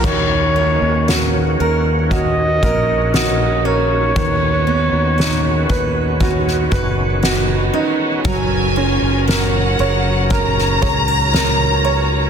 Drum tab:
CC |x---------------|----------------|----------------|
RD |--x-x-x-x-x-x-x-|x-x-x-x---x-x-x-|--x-x-x-----x-x-|
SD |----o-------o---|----o----o--o---|----o----o--o---|
BD |o-------o-o-----|o-----o-o-o-----|o-------o-o-----|